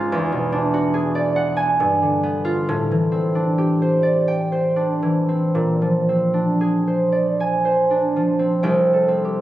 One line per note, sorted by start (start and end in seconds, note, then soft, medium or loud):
0.00 0.15 C#2 medium
0.00 0.14 G#2 medium
0.00 0.15 D#4 medium
0.00 0.14 F4 medium
0.00 0.93 G#4 medium
0.00 0.14 F5 medium
0.00 1.55 G#5 medium
0.12 1.85 E2 medium
0.32 1.84 B2 medium
0.52 3.34 D4 medium
0.74 1.84 F#4 medium
0.94 1.84 G#4 medium
1.15 4.02 D5 medium
1.36 1.83 F#5 medium
1.56 1.83 G#5 medium
1.80 2.72 G2 medium
2.02 2.73 D3 medium
2.23 5.58 B3 medium
2.45 2.72 F4 medium
2.69 5.58 A2 medium
2.91 5.01 E3 medium
3.12 5.27 C4 medium
3.35 4.75 D4 medium
3.58 5.58 G4 medium
3.82 4.51 C5 medium
4.03 7.11 D5 medium
4.28 5.58 G5 medium
4.52 6.86 C5 medium
4.76 6.32 D4 medium
5.02 5.59 E3 medium
5.29 6.08 C4 soft
5.55 8.66 A#2 medium
5.82 8.15 F3 soft
6.09 8.38 C4 soft
6.34 7.89 D4 medium
6.61 8.67 G#4 medium
6.87 7.64 C5 medium
7.12 8.66 D5 medium
7.40 8.66 G#5 medium
7.65 9.41 C5 medium
7.91 8.66 D4 soft
8.16 8.67 F3 medium
8.39 9.07 C4 soft
8.63 9.41 C2 medium
8.63 9.41 G5 medium
8.93 9.41 A4 medium
9.08 9.41 C4 medium
9.25 9.41 G4 medium